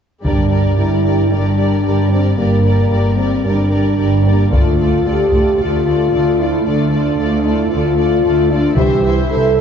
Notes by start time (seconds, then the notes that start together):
0.24 G1 G2 G3 D4 G4 A#4 D5, taiko
0.50 G3 G4 A#4 D5
0.76 G1 G2 G3 E4 G4 A#4 D5
1.03 G3 G4 A#4 D5
1.29 G1 G2 G3 D4 G4 A#4 D5
1.56 G3 G4 A#4 D5
1.82 G1 G2 G3 G4 A#4 D5
2.10 G3 C4 G4 A#4 D5
2.37 G1 G2 G3 A#3 G4 A#4 D5
2.64 G3 G4 A#4 D5
2.91 G1 G2 G3 G4 A#4 D5
3.16 G3 C4 G4 A#4 D5
3.44 G1 G2 G3 D4 G4 A#4 D5
3.71 G3 G4 A#4 D5
3.98 G1 G2 G3 G4 A#4 D5
4.25 G3 A#3 G4 A#4 D5
4.51 D2 A3 F4 A4 D5, taiko
4.79 A3 F4 A4 D5
5.05 D2 A3 F4 G4 A4 D5
5.31 A3 F4 A4 D5, taiko
5.59 D2 A3 F4 A4 D5
5.86 A3 F4 A4 D5
6.12 D2 A3 F4 A4 D5
6.39 A3 E4 F4 A4 D5
6.66 D2 A3 D4 F4 A4 D5
6.92 A3 F4 A4 D5
7.18 D2 A3 F4 A4 D5
7.45 A3 E4 F4 A4 D5
7.71 D2 A3 F4 A4 D5
7.97 A3 F4 A4 D5
8.24 D2 A3 F4 A4 D5
8.51 A3 D4 F4 A4 D5
8.77 C2 E3 E4 G4 C5 E5, taiko
9.03 E3 E4 C5 E5
9.30 C2 E3 E4 A4 C5 E5
9.56 E3 E4 C5 E5